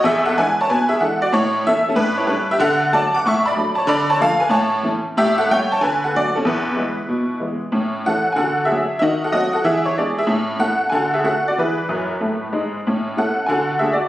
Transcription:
X:1
M:4/4
L:1/16
Q:"Swing" 1/4=187
K:A
V:1 name="Honky-tonk piano"
[Ge]2 [Af]2 [Bg]2 [ca]2 [Bg]2 [Ge]2 [Af]2 [Fd]2 | [Ec]4 [Ae]2 [CA]2 [DB]2 [Ec]2 [DB]2 [=Ge]2 | [Af]4 [da]2 [fd']2 [ec']2 [db]4 [ca]2 | [db]2 [ca]2 [A=f]2 [Bg]2 [ca]4 z4 |
[=Ge]2 [Af]2 [c=g]2 [ca]2 [B^g]2 [Af]2 [Fd]2 [CA]2 | [EB]12 z4 | z4 [Af]3 g [Af]3 [Ge]4 e | [F^d]2 [Af]2 [Fd]2 [Af]2 [Ge]2 [Ec]2 [G=d]2 [Ge]2 |
z4 [Af]3 g [Af]2 [Ge]2 [Af]2 [Fd]2 | [EB]12- [EB]2 z2 | z4 [Af]3 g [Af]3 [Ge]2 [Fd]2 z |]
V:2 name="Honky-tonk piano"
E,,4 [E,G,D]4 B,,4 [E,G,D]4 | A,,4 [E,A,C]4 A,,4 [=G,A,C]4 | D,4 [F,A,D]4 A,,4 [F,A,D]4 | D,4 [=F,A,D]4 A,,4 [E,A,C]4 |
A,,4 [=G,A,C]4 D,4 [F,A,D]4 | E,,4 [E,G,B,]4 B,,4 [E,G,B,]4 | [A,,C]4 [E,A,C]4 [D,F]4 [F,A,D]4 | ^D,4 [F,A,^B,]4 E,4 [G,=B,=D]4 |
[A,,C]4 [A,CE]4 [D,F]4 [A,CF]4 | [E,G]4 [F,,F,]4 [A,,A,]4 [G,,G,]4 | [A,,C]4 [A,CE]4 [D,F]4 [A,DF]4 |]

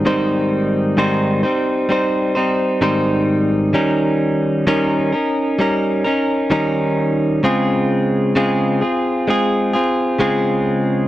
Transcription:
X:1
M:4/4
L:1/8
Q:1/4=65
K:Ab
V:1 name="Clean electric guitar"
[A,,E,G,CEc]2 [A,,E,G,CEc] [G,CEc] [G,CEc] [G,CEc] [A,,E,G,CEc]2 | [E,G,DEB]2 [E,G,DEB] [DEB] [G,DEB] [DEB] [E,G,DEB]2 | [D,A,CFA]2 [D,A,CFA] [CFA] [A,CFA] [CFA] [D,A,CFA]2 |]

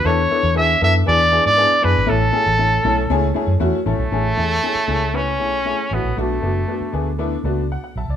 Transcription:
X:1
M:4/4
L:1/16
Q:1/4=117
K:A
V:1 name="Trumpet"
c4 e2 e2 d3 d3 B2 | A12 z2 A,2- | A,8 C6 B,2 | A,8 z8 |]
V:2 name="Upright piano"
[B,DEA]2 [B,DEA]2 [B,DEG]2 [B,DEA]2 [B,DEG]2 [B,DEG]2 [B,DEG]2 [B,DEG]2 | [A,CEA]2 [A,CEG]2 [A,CEA]2 [A,CEA]2 [A,CEG]2 [A,CEG]2 [A,CEF]2 [A,CEA]2 | [A,CEG]2 [A,CEG]2 [A,CEG]2 [A,CEG]2 [A,CEB]2 [A,CEG]2 [A,CEG]2 [A,CEF]2 | [A,B,DF]2 [A,B,DF]2 [A,B,DF]2 [A,B,DG]2 [A,B,DE]2 [A,B,DFd]2 f f [ea] d |]
V:3 name="Fingered electric bass" clef=bass
E,,2 z E,,3 F,,2 E,,3 G,,2 z F,, G,,, | A,,,2 z A,,,3 B,,,2 C,,2 z F,, E,, z A,,, B,,, | A,,,2 E,,2 z2 C,,4 B,,,3 z A,,, _B,,, | B,,,2 F,,,2 z2 D,,4 C,,3 z B,,, C,, |]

